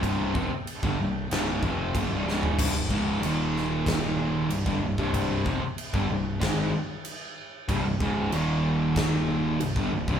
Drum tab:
CC |x---x---x---x---|x---x---x---x---|x---x---x---x---|x---x---x---x---|
SD |--------o-----o-|------o-o-------|--------o-------|--------o-------|
FT |---------------o|----------------|----------------|----------------|
BD |o-o--o----o-o---|o-o-----o----o-o|o-o--o--o-------|o-o-----o----o-o|